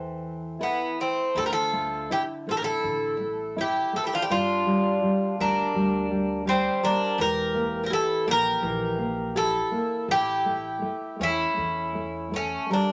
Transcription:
Already playing: upright bass E2, nylon-string guitar E3, twelve-string acoustic guitar A3, bouzouki C4
0.59 twelve-string acoustic guitar E3, bouzouki B3, nylon-string guitar E4 A4 E5
1.00 twelve-string acoustic guitar A3, bouzouki C4
1.35 upright bass D2, nylon-string guitar D3, twelve-string acoustic guitar E4, bouzouki A4
1.42 twelve-string acoustic guitar G4, bouzouki A#4
1.50 twelve-string acoustic guitar F4, bouzouki A4
1.73 nylon-string guitar A3
2.10 nylon-string guitar E4, twelve-string acoustic guitar E4, bouzouki G4
2.47 upright bass A1, nylon-string guitar A3, twelve-string acoustic guitar F4
2.51 bouzouki A4
2.56 twelve-string acoustic guitar G4, bouzouki A#4
2.62 twelve-string acoustic guitar E4, bouzouki A4
2.83 upright bass A1, nylon-string guitar D3
3.20 nylon-string guitar A3
3.56 nylon-string guitar E4, twelve-string acoustic guitar E4
3.61 bouzouki G4
3.93 nylon-string guitar A3, twelve-string acoustic guitar F4, bouzouki A4
4.04 twelve-string acoustic guitar E4, bouzouki G4
4.13 twelve-string acoustic guitar D4, bouzouki F4
4.22 twelve-string acoustic guitar E4, bouzouki G4
4.29 upright bass G1, nylon-string guitar G3, twelve-string acoustic guitar D4, bouzouki F4
4.66 nylon-string guitar G3
5.02 nylon-string guitar G3
5.38 upright bass D2, nylon-string guitar G3, twelve-string acoustic guitar A#3, bouzouki D4
5.74 upright bass D2, nylon-string guitar G3
6.11 nylon-string guitar G3
6.45 nylon-string guitar G3, twelve-string acoustic guitar G3, bouzouki C4
6.82 nylon-string guitar G3, twelve-string acoustic guitar A#3, bouzouki D4
7.18 upright bass E1, nylon-string guitar E3, twelve-string acoustic guitar G4, bouzouki A#4
7.54 nylon-string guitar A#3
7.84 twelve-string acoustic guitar G4, bouzouki A#4
7.90 twelve-string acoustic guitar E4, nylon-string guitar G4, bouzouki A4
8.27 upright bass A#1, nylon-string guitar A#3, twelve-string acoustic guitar G4
8.31 bouzouki A#4
8.62 upright bass A#1, nylon-string guitar E3
8.98 nylon-string guitar A#3
9.35 twelve-string acoustic guitar E4, nylon-string guitar G4, bouzouki A4
9.71 nylon-string guitar A#3
10.08 upright bass A1, twelve-string acoustic guitar E4, bouzouki G4, nylon-string guitar A4
10.45 nylon-string guitar A3
10.82 nylon-string guitar A3
11.19 upright bass E2, nylon-string guitar A3, twelve-string acoustic guitar C#4
11.23 bouzouki E4
11.57 upright bass E2, nylon-string guitar A3
11.94 nylon-string guitar A3
12.31 nylon-string guitar A3, twelve-string acoustic guitar A3
12.36 bouzouki C#4
12.69 nylon-string guitar G3, twelve-string acoustic guitar A#3, bouzouki D4

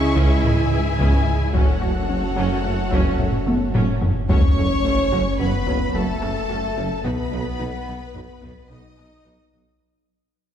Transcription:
Already playing: sub bass C#2, cello section C#3, french horn section G#3 E4, viola section E4, violin section G#4 E5 C#6
0.16 tuba C#2, double bass section C#2, synth pluck C#3, viola section C#4, taiko
0.44 tuba C#2, double bass section C#2, cello section G#2, synth pluck E3, viola section G#3, violin section G#5, taiko low-mid
0.71 tuba C#2, double bass section C#2, viola section E3, synth pluck E3
0.99 tuba C#2, double bass section C#2, synth pluck C#3, viola section C#4, taiko
1.53 tuba F#1, sub bass F#1, double bass section F#2, cello section F#2, synth pluck F#3, french horn section A3 C#4, viola section C#4 F#4, violin section A4 C#5 F#5, taiko
1.82 tuba F#1, double bass section F#2, viola section A3, synth pluck F#4
2.09 tuba F#1, double bass section F#2, viola section F#3, synth pluck C#4
2.36 tuba F#1, double bass section F#2, synth pluck F#3, viola section C#4
2.64 tuba F#1, double bass section F#2, viola section A3, synth pluck F#4
2.91 tuba F#1, double bass section F#2, synth pluck F#3, viola section C#4, taiko
3.19 tuba F#1, double bass section F#2, synth pluck A3, viola section A3, taiko low-mid
3.46 tuba F#1, double bass section F#2, viola section F#3, synth pluck A3, taiko high
3.74 tuba F#1, double bass section F#2, synth pluck F#3, viola section C#4, taiko low-mid
4.02 taiko low
4.29 sub bass F#1, double bass section F#1, tuba F#1, cello section F#2, synth pluck F#3, viola section C#4 A4, french horn section C#4, violin section C#5 C#6, taiko, sub drop
4.57 double bass section F#1, tuba F#1, cello section F#2, viola section C#4 A4
4.84 double bass section F#1, tuba F#1, cello section F#2, synth pluck A3, viola section C#4 A4
5.12 double bass section F#1, tuba F#1, cello section F#2, viola section C#4 A4, synth pluck F#4, taiko rim
5.39 double bass section F#1, tuba F#1, cello section F#2, french horn section B3, viola section C#4 A4, synth pluck F#4, violin section B4 B5, taiko low
5.67 double bass section F#1, tuba F#1, cello section F#2, synth pluck F#3, viola section C#4 A4, taiko
5.94 double bass section F#1, tuba F#1, cello section F#2, french horn section A3, viola section C#4 A4, synth pluck F#4, violin section A4 A5
6.22 tuba F#1, double bass section F#1, cello section F#2, synth pluck A3, viola section C#4 A4, taiko rim
6.49 tuba F#1, double bass section F#1, cello section F#2, viola section C#4 A4, synth pluck F#4
6.77 tuba F#1, double bass section F#1, cello section F#2, viola section C#4 A4
7.04 tuba B1, double bass section B1, sub bass B1, cello section B2, synth pluck B3, french horn section B3, viola section D#4 F#4, violin section B4 B5, taiko
7.32 double bass section B1, tuba B1, cello section B2, viola section D#4 F#4
7.59 double bass section B1, tuba B1, cello section B2, synth pluck D#4, viola section D#4 F#4
7.87 double bass section B1, tuba B1, cello section B2, viola section D#4 F#4, synth pluck B4
8.14 double bass section B1, tuba B1, cello section B2, viola section D#4 F#4, synth pluck B4, taiko low
8.42 tuba B1, double bass section B1, cello section B2, synth pluck B3, viola section D#4 F#4, taiko
8.69 double bass section B1, tuba B1, cello section B2, french horn section D#4, viola section D#4 F#4, synth pluck B4, violin section D#5 D#6
8.97 double bass section B1, tuba B1, cello section B2, synth pluck D#4, viola section D#4 F#4, taiko rim
9.25 tuba B1, double bass section B1, cello section B2, viola section D#4 F#4, synth pluck B4
9.52 tuba B1, double bass section B1, cello section B2, viola section D#4 F#4

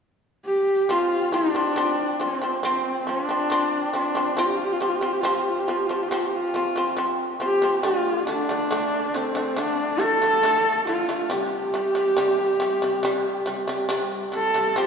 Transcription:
0.45 horsehead fiddle G4
0.89 shamisen F3 C4, horsehead fiddle F4
1.32 shamisen F3 C4, horsehead fiddle D4
1.55 shamisen F3 C4
1.76 shamisen F3 C4
2.20 shamisen F3 C4, horsehead fiddle C4
2.42 shamisen F3 C4
2.63 shamisen F3 C4, horsehead fiddle C4
3.07 shamisen F3 C4, horsehead fiddle D4
3.29 shamisen F3 C4
3.50 shamisen F3 C4
3.93 shamisen F3 C4
3.98 horsehead fiddle D4
4.15 shamisen F3 C4
4.37 shamisen F3 C4, horsehead fiddle F4
4.46 horsehead fiddle G4
4.56 horsehead fiddle F4
4.65 horsehead fiddle G4
4.72 horsehead fiddle F4
4.80 shamisen F3 C4, horsehead fiddle G4
4.89 horsehead fiddle F4
4.96 horsehead fiddle G4
5.01 shamisen F3 C4, horsehead fiddle F4
5.13 horsehead fiddle G4
5.20 shamisen F3, horsehead fiddle F4
5.25 shamisen C4, horsehead fiddle G4
5.34 horsehead fiddle F4
5.42 horsehead fiddle G4
5.50 horsehead fiddle F4
5.58 horsehead fiddle G4
5.67 shamisen F3 C4, horsehead fiddle F4
5.77 horsehead fiddle G4
5.86 shamisen F3, horsehead fiddle F4
5.91 shamisen C4, horsehead fiddle G4
6.02 horsehead fiddle F4
6.08 shamisen F3, horsehead fiddle G4
6.12 shamisen C4
6.17 horsehead fiddle F4
6.25 horsehead fiddle G4
6.35 horsehead fiddle F4
6.54 shamisen F3 C4
6.76 shamisen F3 C4
6.97 shamisen F3 C4
7.40 shamisen F3 C4, horsehead fiddle G4
7.62 shamisen F3 C4
7.83 shamisen D3 A3, horsehead fiddle F4
8.27 shamisen D3 A3, horsehead fiddle D4
8.49 shamisen D3 A3
8.71 shamisen D3 A3
9.14 shamisen D3 A3, horsehead fiddle C4
9.35 shamisen D3 A3
9.57 shamisen D3 A3, horsehead fiddle D4
10.00 shamisen D3 A3, horsehead fiddle A4
10.22 shamisen D3 A3
10.43 shamisen D3 A3
10.87 shamisen D3 A3, horsehead fiddle F4
11.09 shamisen D3 A3
11.30 shamisen C3 G3, horsehead fiddle G4
11.74 shamisen C3 G3
11.95 shamisen C3 G3
12.17 shamisen C3 G3
12.60 shamisen C3 G3
12.82 shamisen C3 G3
13.03 shamisen C3 G3
13.46 shamisen C3 G3
13.68 shamisen C3 G3
13.89 shamisen C3 G3
14.32 shamisen C3 G3, horsehead fiddle A4
14.54 shamisen C3 G3
14.76 shamisen F3 C4, horsehead fiddle G4

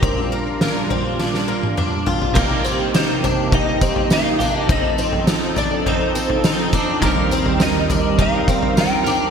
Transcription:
Already playing: electric slide guitar A#4
0.03 analog synth pad A#2 G3 D4 F4, twelve-string acoustic guitar C4, kick, floor tom
0.32 twelve-string acoustic guitar A#3
0.61 twelve-string acoustic guitar A#3, snare
0.90 twelve-string acoustic guitar C4, floor tom
1.19 twelve-string acoustic guitar D4, snare
1.34 snare
1.48 twelve-string acoustic guitar A#3
1.63 high tom
1.77 twelve-string acoustic guitar D4, mid tom
2.06 twelve-string acoustic guitar F4, floor tom
2.22 floor tom
2.34 clean electric guitar C3 G3, analog synth pad C3 A#3 D#4 G4, twelve-string acoustic guitar A#3, kick, floor tom, crash, tambourine
2.38 clean electric guitar A#3 D#4 G4
2.65 twelve-string acoustic guitar C4, tambourine
2.94 twelve-string acoustic guitar D#4, electric slide guitar C5, snare, tambourine
3.24 twelve-string acoustic guitar D4, floor tom, tambourine
3.51 clean electric guitar G3 A#3 D#4, twelve-string acoustic guitar D#4, electric slide guitar D#5, kick, floor tom
3.57 clean electric guitar G4
3.81 twelve-string acoustic guitar C4, kick, tambourine
3.96 floor tom
4.10 twelve-string acoustic guitar D#4, electric slide guitar F5, snare, tambourine
4.39 twelve-string acoustic guitar D4, clean electric guitar D#4 G4, floor tom, tambourine
4.44 clean electric guitar A#3
4.59 electric slide guitar D#5
4.67 clean electric guitar F3 C4, analog synth pad F3 C4 A4, twelve-string acoustic guitar A3, kick, floor tom, tambourine
4.71 clean electric guitar D#4 A4, electric slide guitar D#5
4.98 twelve-string acoustic guitar C4, tambourine
5.13 floor tom
5.27 twelve-string acoustic guitar D#4, snare, tambourine
5.56 twelve-string acoustic guitar D4, electric slide guitar D5, floor tom, tambourine
5.84 clean electric guitar F3 C4 D#4, twelve-string acoustic guitar D#4, electric slide guitar C5, floor tom
5.90 clean electric guitar A4
6.15 twelve-string acoustic guitar C4, tambourine
6.30 floor tom
6.44 twelve-string acoustic guitar D#4, snare, tambourine
6.73 twelve-string acoustic guitar D4, clean electric guitar D#4 A4, kick, tambourine
6.78 clean electric guitar C4
7.00 analog synth pad D#2 G3 A#4, clean electric guitar D#3 G3, twelve-string acoustic guitar A#3, kick, floor tom, tambourine
7.05 clean electric guitar C4 G4 A#4
7.31 twelve-string acoustic guitar C4, tambourine
7.46 floor tom
7.60 twelve-string acoustic guitar D#4, electric slide guitar D#5, snare, tambourine
7.90 twelve-string acoustic guitar D4, floor tom, tambourine
8.18 clean electric guitar G3 C4 G4, twelve-string acoustic guitar D#4, electric slide guitar F5, kick, floor tom
8.23 clean electric guitar A#4
8.48 twelve-string acoustic guitar C4, kick, tambourine
8.63 floor tom
8.77 twelve-string acoustic guitar D#4, electric slide guitar G5, snare, tambourine
9.04 twelve-string acoustic guitar D4, clean electric guitar G4 A#4, tambourine
9.10 clean electric guitar C4

